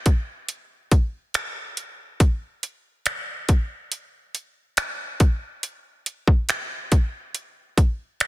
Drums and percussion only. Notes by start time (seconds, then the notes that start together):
0.06 kick, closed hi-hat
0.49 closed hi-hat
0.91 kick, closed hi-hat
1.34 finger snap, closed hi-hat
1.77 closed hi-hat
2.20 kick, closed hi-hat
2.63 closed hi-hat
3.06 finger snap, closed hi-hat
3.49 kick, closed hi-hat
3.92 closed hi-hat
4.35 closed hi-hat
4.77 finger snap, closed hi-hat
5.20 kick, closed hi-hat
5.63 closed hi-hat
6.06 closed hi-hat
6.27 kick
6.49 finger snap, closed hi-hat
6.92 kick, closed hi-hat
7.35 closed hi-hat
7.78 kick, closed hi-hat
8.20 finger snap, closed hi-hat